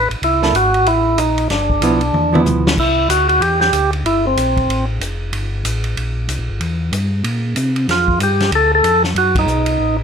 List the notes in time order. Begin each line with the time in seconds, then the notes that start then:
0.10 A1, ride
0.22 C2 E4, ride
0.42 A#3 E4 A4, snare
0.54 G#1 F#4, hi-hat pedal, ride
0.74 ride
0.85 A1 E4, ride
1.17 A#1 D#4, hi-hat pedal, ride
1.38 ride
1.49 G1 D4, snare, ride
1.70 kick
1.80 B1 F3 B3 E4, hi-hat pedal, ride
2.01 ride
2.13 E2, high tom
2.33 F3 B3 E4, high tom
2.44 D2, hi-hat pedal, mid tom
2.67 snare
2.77 C2 E4, kick, crash
3.09 D2 F#4, hi-hat pedal, ride
3.29 F#4, ride
3.40 E2 G4, ride
3.61 G4, snare
3.73 D2, hi-hat pedal, ride
3.93 ride
4.05 G1 E4, ride
4.27 C4
4.36 A#1, hi-hat pedal, ride
4.57 kick, ride
4.68 A1, ride
5.01 F1, hi-hat pedal, ride
5.33 G1, ride
5.65 A1, hi-hat pedal, ride
5.84 ride
5.97 A#1, ride
6.28 C2, hi-hat pedal, ride
6.39 A#1
6.50 G1
6.60 E2, ride
6.92 G2, hi-hat pedal, ride
7.24 A#2, ride
7.56 C3, hi-hat pedal, ride
7.76 ride
7.88 F2 F4, snare, ride
8.08 kick
8.19 G2, hi-hat pedal, ride
8.23 G4
8.40 snare, ride
8.51 D2, ride
8.55 A4
8.75 A4
8.83 F2, hi-hat pedal, ride
9.04 snare
9.15 F#2 F#4, ride
9.35 D#4, kick, ride
9.46 B1, hi-hat pedal
9.66 ride
9.78 A1